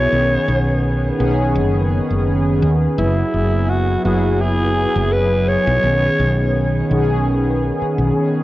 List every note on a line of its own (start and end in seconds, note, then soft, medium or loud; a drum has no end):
0.00 0.14 F#3 loud
0.00 0.11 B3 medium
0.00 0.14 E4 medium
0.00 0.13 G#4 loud
0.00 1.19 C#5 loud
0.10 0.36 B1 loud
0.10 1.14 D#3 medium
0.10 1.15 B3 medium
0.10 1.15 C#4 medium
0.10 1.16 G#4 medium
0.48 1.10 B1 medium
1.18 1.55 B1 medium
1.18 2.41 D#3 loud
1.18 2.42 B3 medium
1.18 2.42 C#4 loud
1.18 2.42 G#4 loud
1.55 1.99 F#1 loud
2.11 2.64 F#1 medium
2.46 2.94 D#3 medium
2.46 2.94 B3 medium
2.46 2.94 C#4 medium
2.46 2.94 G#4 medium
2.62 2.86 D#2 medium
2.97 3.22 F#1 loud
2.97 4.00 F#3 medium
2.97 4.01 B3 medium
2.97 3.71 E4 loud
2.97 4.01 E4 medium
2.97 4.02 G#4 medium
3.34 3.96 F#1 medium
3.70 4.05 F#4 loud
4.04 4.85 F#1 medium
4.04 5.27 F#3 loud
4.04 5.27 B3 medium
4.04 5.28 E4 medium
4.04 4.42 F#4 medium
4.04 5.28 G#4 loud
4.41 5.14 G#4 loud
4.95 5.56 F#1 medium
5.12 5.50 B4 loud
5.31 5.79 F#3 medium
5.31 5.80 B3 medium
5.31 5.80 E4 medium
5.31 5.80 G#4 medium
5.48 6.91 C#5 loud
5.67 5.77 B1 loud
5.83 6.07 B1 loud
5.83 6.86 D#3 medium
5.83 6.87 B3 medium
5.83 6.87 C#4 medium
5.83 6.88 G#4 medium
6.19 6.81 B1 medium
6.89 7.70 B1 medium
6.89 8.13 D#3 loud
6.89 8.13 B3 medium
6.89 8.14 C#4 medium
6.89 8.14 G#4 loud
7.82 muted fretless electric bass stroke soft
7.98 8.10 B1 medium
8.17 8.43 D#3 medium
8.17 8.43 B3 medium
8.17 8.43 C#4 medium
8.17 8.43 G#4 medium